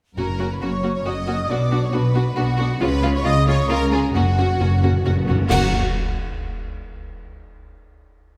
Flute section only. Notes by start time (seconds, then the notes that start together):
0.19 A#5
0.53 B5
0.63 C#6
0.97 C#6
1.07 D#6
1.51 D6
1.85 C#6
1.94 B5
2.37 F#5
2.82 B5
3.17 C#6
3.27 D#6
3.48 C#6
3.69 A#5
3.93 G#5
4.16 F#5
5.51 F#5